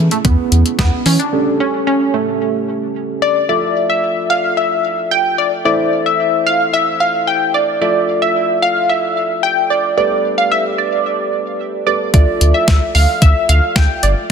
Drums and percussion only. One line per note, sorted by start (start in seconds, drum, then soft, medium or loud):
0.11 closed hi-hat medium
0.25 kick loud
0.25 closed hi-hat medium
0.52 closed hi-hat medium
0.66 closed hi-hat soft
0.79 kick loud
0.79 snare loud
0.79 closed hi-hat medium
1.06 open hi-hat medium
1.20 closed hi-hat soft
12.14 kick loud
12.14 closed hi-hat medium
12.41 closed hi-hat medium
12.68 kick loud
12.68 snare loud
12.68 closed hi-hat medium
12.95 open hi-hat medium
13.22 kick loud
13.22 closed hi-hat medium
13.49 closed hi-hat medium
13.76 kick loud
13.76 snare loud
13.76 closed hi-hat medium
14.03 closed hi-hat medium